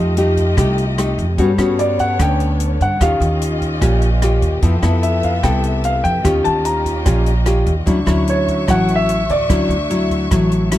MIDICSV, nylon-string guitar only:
0, 0, Header, 1, 2, 480
1, 0, Start_track
1, 0, Tempo, 405680
1, 1633, Time_signature, 4, 2, 24, 8
1, 12755, End_track
2, 0, Start_track
2, 0, Title_t, "Nylon-string guitar"
2, 0, Program_c, 0, 24
2, 0, Note_on_c, 0, 53, 53
2, 0, Note_on_c, 0, 57, 52
2, 0, Note_on_c, 0, 63, 54
2, 0, Note_on_c, 0, 67, 58
2, 160, Note_off_c, 0, 57, 0
2, 164, Note_off_c, 0, 63, 0
2, 165, Note_off_c, 0, 67, 0
2, 203, Note_on_c, 0, 57, 52
2, 209, Note_on_c, 0, 63, 52
2, 215, Note_on_c, 0, 67, 60
2, 640, Note_off_c, 0, 57, 0
2, 643, Note_off_c, 0, 63, 0
2, 645, Note_off_c, 0, 67, 0
2, 653, Note_off_c, 0, 53, 0
2, 680, Note_on_c, 0, 48, 51
2, 684, Note_on_c, 0, 57, 48
2, 686, Note_on_c, 0, 63, 50
2, 693, Note_on_c, 0, 67, 60
2, 986, Note_off_c, 0, 57, 0
2, 989, Note_off_c, 0, 63, 0
2, 992, Note_off_c, 0, 67, 0
2, 1162, Note_on_c, 0, 57, 52
2, 1167, Note_on_c, 0, 63, 49
2, 1169, Note_on_c, 0, 67, 57
2, 1480, Note_off_c, 0, 57, 0
2, 1481, Note_off_c, 0, 63, 0
2, 1483, Note_off_c, 0, 67, 0
2, 1612, Note_off_c, 0, 48, 0
2, 1634, Note_on_c, 0, 55, 57
2, 1639, Note_on_c, 0, 59, 53
2, 1644, Note_on_c, 0, 61, 59
2, 1646, Note_on_c, 0, 66, 58
2, 1777, Note_off_c, 0, 59, 0
2, 1779, Note_off_c, 0, 61, 0
2, 1780, Note_off_c, 0, 66, 0
2, 1869, Note_on_c, 0, 59, 61
2, 1877, Note_on_c, 0, 61, 64
2, 1883, Note_on_c, 0, 66, 64
2, 2552, Note_off_c, 0, 59, 0
2, 2554, Note_off_c, 0, 61, 0
2, 2558, Note_off_c, 0, 66, 0
2, 2568, Note_off_c, 0, 55, 0
2, 2593, Note_on_c, 0, 50, 51
2, 2597, Note_on_c, 0, 59, 49
2, 2599, Note_on_c, 0, 61, 50
2, 3238, Note_off_c, 0, 59, 0
2, 3240, Note_off_c, 0, 61, 0
2, 3528, Note_off_c, 0, 50, 0
2, 3555, Note_on_c, 0, 51, 56
2, 3557, Note_on_c, 0, 61, 55
2, 3561, Note_on_c, 0, 65, 53
2, 3566, Note_on_c, 0, 67, 59
2, 4474, Note_off_c, 0, 61, 0
2, 4477, Note_off_c, 0, 65, 0
2, 4477, Note_off_c, 0, 67, 0
2, 4488, Note_off_c, 0, 51, 0
2, 4512, Note_on_c, 0, 46, 49
2, 4519, Note_on_c, 0, 61, 54
2, 4520, Note_on_c, 0, 65, 49
2, 4526, Note_on_c, 0, 67, 53
2, 4822, Note_off_c, 0, 61, 0
2, 4824, Note_off_c, 0, 65, 0
2, 4826, Note_off_c, 0, 67, 0
2, 4996, Note_on_c, 0, 61, 50
2, 4999, Note_on_c, 0, 65, 55
2, 5008, Note_on_c, 0, 67, 54
2, 5447, Note_off_c, 0, 46, 0
2, 5453, Note_off_c, 0, 61, 0
2, 5456, Note_off_c, 0, 65, 0
2, 5458, Note_off_c, 0, 67, 0
2, 5470, Note_on_c, 0, 53, 53
2, 5470, Note_on_c, 0, 59, 54
2, 5475, Note_on_c, 0, 64, 56
2, 5484, Note_on_c, 0, 69, 57
2, 5609, Note_off_c, 0, 59, 0
2, 5614, Note_off_c, 0, 64, 0
2, 5616, Note_off_c, 0, 69, 0
2, 5708, Note_on_c, 0, 59, 63
2, 5712, Note_on_c, 0, 64, 66
2, 5716, Note_on_c, 0, 69, 60
2, 6390, Note_off_c, 0, 59, 0
2, 6392, Note_off_c, 0, 64, 0
2, 6394, Note_off_c, 0, 69, 0
2, 6406, Note_off_c, 0, 53, 0
2, 6425, Note_on_c, 0, 48, 48
2, 6429, Note_on_c, 0, 59, 49
2, 6432, Note_on_c, 0, 64, 49
2, 6440, Note_on_c, 0, 69, 56
2, 7350, Note_off_c, 0, 59, 0
2, 7353, Note_off_c, 0, 64, 0
2, 7355, Note_off_c, 0, 69, 0
2, 7364, Note_off_c, 0, 48, 0
2, 7383, Note_on_c, 0, 51, 57
2, 7386, Note_on_c, 0, 61, 52
2, 7389, Note_on_c, 0, 65, 56
2, 7392, Note_on_c, 0, 67, 66
2, 8309, Note_off_c, 0, 61, 0
2, 8310, Note_off_c, 0, 65, 0
2, 8313, Note_off_c, 0, 67, 0
2, 8323, Note_off_c, 0, 51, 0
2, 8341, Note_on_c, 0, 46, 48
2, 8348, Note_on_c, 0, 61, 52
2, 8349, Note_on_c, 0, 65, 51
2, 8357, Note_on_c, 0, 67, 51
2, 8656, Note_off_c, 0, 61, 0
2, 8659, Note_off_c, 0, 65, 0
2, 8661, Note_off_c, 0, 67, 0
2, 8823, Note_on_c, 0, 61, 53
2, 8829, Note_on_c, 0, 65, 55
2, 8837, Note_on_c, 0, 67, 54
2, 9149, Note_off_c, 0, 61, 0
2, 9153, Note_off_c, 0, 65, 0
2, 9155, Note_off_c, 0, 67, 0
2, 9283, Note_off_c, 0, 46, 0
2, 9298, Note_on_c, 0, 50, 54
2, 9303, Note_on_c, 0, 54, 54
2, 9307, Note_on_c, 0, 61, 53
2, 9313, Note_on_c, 0, 64, 63
2, 9447, Note_off_c, 0, 54, 0
2, 9450, Note_off_c, 0, 61, 0
2, 9452, Note_off_c, 0, 64, 0
2, 9536, Note_on_c, 0, 54, 67
2, 9543, Note_on_c, 0, 61, 67
2, 9545, Note_on_c, 0, 64, 68
2, 10226, Note_off_c, 0, 54, 0
2, 10228, Note_off_c, 0, 61, 0
2, 10230, Note_off_c, 0, 64, 0
2, 10242, Note_off_c, 0, 50, 0
2, 10257, Note_on_c, 0, 45, 56
2, 10264, Note_on_c, 0, 54, 56
2, 10264, Note_on_c, 0, 61, 49
2, 10273, Note_on_c, 0, 64, 63
2, 10912, Note_off_c, 0, 54, 0
2, 10914, Note_off_c, 0, 61, 0
2, 10918, Note_off_c, 0, 64, 0
2, 11202, Note_off_c, 0, 45, 0
2, 11228, Note_on_c, 0, 50, 54
2, 11230, Note_on_c, 0, 54, 55
2, 11232, Note_on_c, 0, 61, 57
2, 11237, Note_on_c, 0, 64, 60
2, 11539, Note_off_c, 0, 54, 0
2, 11542, Note_off_c, 0, 61, 0
2, 11544, Note_off_c, 0, 64, 0
2, 11712, Note_on_c, 0, 54, 52
2, 11723, Note_on_c, 0, 64, 62
2, 12155, Note_off_c, 0, 54, 0
2, 12160, Note_off_c, 0, 64, 0
2, 12168, Note_off_c, 0, 50, 0
2, 12193, Note_on_c, 0, 45, 51
2, 12197, Note_on_c, 0, 54, 50
2, 12207, Note_on_c, 0, 64, 52
2, 12636, Note_off_c, 0, 54, 0
2, 12642, Note_off_c, 0, 64, 0
2, 12677, Note_on_c, 0, 54, 45
2, 12682, Note_on_c, 0, 61, 50
2, 12683, Note_on_c, 0, 64, 54
2, 12755, Note_off_c, 0, 45, 0
2, 12755, Note_off_c, 0, 54, 0
2, 12755, Note_off_c, 0, 61, 0
2, 12755, Note_off_c, 0, 64, 0
2, 12755, End_track
0, 0, End_of_file